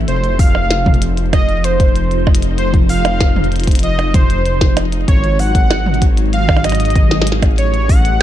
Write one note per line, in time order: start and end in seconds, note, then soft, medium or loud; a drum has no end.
0.00 5.08 A4 medium
0.08 5.05 F1 medium
0.08 5.08 F3 medium
0.08 0.41 C5 loud
0.08 closed hi-hat medium
0.24 closed hi-hat soft
0.31 7.58 D#4 medium
0.39 1.02 F5 loud
0.39 kick loud
0.39 open hi-hat medium
0.55 percussion blips medium
0.71 snare loud
0.71 closed hi-hat medium
0.86 kick loud
0.86 mid tom loud
0.94 closed hi-hat soft
1.02 closed hi-hat medium
1.17 closed hi-hat soft
1.33 1.66 D#5 loud
1.33 kick loud
1.33 closed hi-hat medium
1.33 percussion blips medium
1.49 closed hi-hat soft
1.58 5.08 C5 medium
1.64 2.27 C5 loud
1.64 closed hi-hat medium
1.80 kick loud
1.80 closed hi-hat soft
1.96 closed hi-hat soft
2.11 closed hi-hat soft
2.27 kick loud
2.27 percussion blips medium
2.35 closed hi-hat medium
2.42 closed hi-hat medium
2.58 2.72 C5 medium
2.58 closed hi-hat soft
2.74 kick loud
2.74 closed hi-hat soft
2.89 3.48 F5 loud
2.89 open hi-hat medium
3.05 closed hi-hat medium
3.05 percussion blips medium
3.21 kick loud
3.21 snare loud
3.21 closed hi-hat medium
3.36 mid tom loud
3.44 closed hi-hat soft
3.52 closed hi-hat soft
3.56 closed hi-hat soft
3.60 closed hi-hat medium
3.64 kick loud
3.64 closed hi-hat medium
3.67 closed hi-hat medium
3.71 closed hi-hat medium
3.75 closed hi-hat medium
3.79 4.16 D#5 loud
3.79 closed hi-hat medium
3.83 closed hi-hat soft
3.99 closed hi-hat soft
3.99 percussion blips medium
4.14 4.77 C5 loud
4.14 kick loud
4.14 closed hi-hat medium
4.14 mid tom medium
4.30 closed hi-hat soft
4.46 closed hi-hat medium
4.61 kick loud
4.61 snare loud
4.61 closed hi-hat soft
4.77 closed hi-hat medium
4.77 percussion blips medium
4.92 closed hi-hat medium
5.08 7.55 G#1 medium
5.08 7.58 F#3 medium
5.08 5.41 C#5 loud
5.08 kick loud
5.08 closed hi-hat medium
5.24 closed hi-hat soft
5.39 6.02 F#5 loud
5.39 open hi-hat medium
5.55 kick loud
5.55 closed hi-hat medium
5.71 snare loud
5.71 closed hi-hat medium
5.71 percussion blips medium
5.86 mid tom loud
5.94 closed hi-hat soft
6.02 kick loud
6.02 closed hi-hat medium
6.17 7.58 G#4 medium
6.17 closed hi-hat medium
6.33 6.66 F5 loud
6.33 closed hi-hat medium
6.49 kick loud
6.49 closed hi-hat soft
6.49 percussion blips medium
6.56 closed hi-hat soft
6.56 percussion blips medium
6.64 7.27 D#5 loud
6.64 closed hi-hat medium
6.64 percussion blips medium
6.69 closed hi-hat medium
6.72 closed hi-hat soft
6.72 percussion blips soft
6.75 closed hi-hat medium
6.80 closed hi-hat soft
6.85 closed hi-hat soft
6.90 closed hi-hat soft
6.96 kick loud
6.96 closed hi-hat medium
7.11 snare loud
7.11 closed hi-hat soft
7.22 snare medium
7.27 closed hi-hat medium
7.32 snare medium
7.42 kick loud
7.42 closed hi-hat medium
7.42 percussion blips medium
7.58 8.22 A1 medium
7.58 8.22 G3 loud
7.58 7.91 C#5 loud
7.58 closed hi-hat medium
7.66 8.22 E4 medium
7.74 closed hi-hat soft
7.89 8.22 F#5 loud
7.89 kick loud
7.89 open hi-hat medium
8.05 closed hi-hat medium